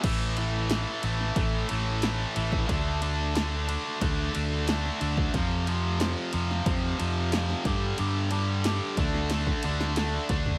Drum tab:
CC |x---------------|----------------|----------------|----------------|
RD |x-x-x-x-x-x-x-x-|x-x-x-x-x-x-x-x-|x-x-x-x-x-x-x-x-|x-x-x-x-x-x-x-x-|
SD |----o--o----o---|----o-------oo--|----o--o----oo--|----o--oo--oo---|
FT |----------------|----------------|----------------|---------------o|
BD |o-------o------o|o-------o------o|o-------o-----o-|------o--o----o-|